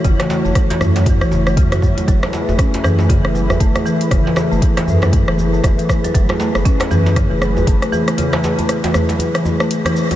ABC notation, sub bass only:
X:1
M:4/4
L:1/16
Q:"Swing 16ths" 1/4=118
K:F#m
V:1 name="Sub bass" clef=bass
F,,, z2 F,,, z2 F,,3 F,,,3 F,,3 z | F,,, z2 F,,, z2 F,,3 F,,,3 F,,, z3 | F,,, z2 F,,, z2 F,,3 F,,,3 F,,, z3 | F,,, z2 F,,, z2 F,,3 F,,,3 F,,, z3 |
z16 |]